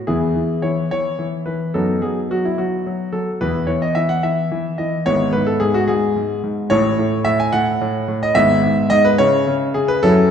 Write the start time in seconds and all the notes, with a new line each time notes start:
0.07 E2 E3 B3 E4 G#4
0.36 E3
0.62 E3 C#5
0.91 E3 C#5
1.19 E3
1.46 E3 B4
1.74 F#2 F#3 B3 D#4 A4
2.02 F#3 G#4
2.31 F#3 F#4
2.45 E4
2.58 F#3 F#4
2.86 F#3
3.12 F#3 A4
3.41 E2 E3 B3 E4 B4
3.67 E3 C#5
3.82 D#5
3.95 E3 E5
4.09 F#5
4.23 E3 E5
4.52 E3
4.78 E3 D#5
5.06 G#1 G#2 B3 E4 C#5
5.33 G#2 B4
5.47 A4
5.60 G#2 G#4
5.74 F#4
5.88 G#2 G#4
6.16 G#2
6.43 G#2
6.70 A1 A2 A3 E4 C#5
6.99 A2
7.25 A2 E5
7.40 G#5
7.53 A2 F#5
7.81 A2
8.08 A2
8.23 D#5
8.35 G#1 G#2 B3 E4 E5
8.63 G#2
8.90 G#2 D#5
9.05 B4
9.18 C#3 C#4 E4 C#5
9.47 C#3
9.74 C#3 G#4
9.88 B4
10.03 F#2 F#3 C#4 E4 A4